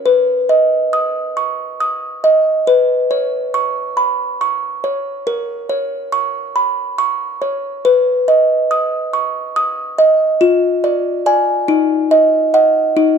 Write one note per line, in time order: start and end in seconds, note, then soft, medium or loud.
0.06 2.64 B4 medium
0.49 1.19 D#5 soft
0.93 1.63 D#6 soft
1.37 1.80 C#6 soft
1.80 2.50 D#6 soft
2.24 2.67 D#5 soft
2.67 5.23 B4 medium
3.11 3.80 C#5 soft
3.54 4.24 C#6 medium
3.97 4.41 B5 soft
4.41 5.10 C#6 medium
4.84 5.27 C#5 soft
5.27 7.81 A#4 medium
5.69 6.38 C#5 medium
6.12 6.82 C#6 medium
6.56 6.99 B5 soft
6.98 7.68 C#6 medium
7.42 7.85 C#5 soft
7.85 10.37 B4 medium
8.28 8.97 D#5 medium
8.71 9.39 D#6 medium
9.13 9.56 C#6 soft
9.56 10.24 D#6 medium
9.98 10.41 D#5 medium
10.41 11.65 F4 medium
10.84 11.25 D5 medium
11.26 11.65 D5 medium
11.26 11.65 G#5 medium
11.68 12.93 D#4 medium
12.11 12.53 D#5 medium
12.54 12.93 D#5 medium
12.54 12.93 F#5 medium
12.97 13.18 D#4 medium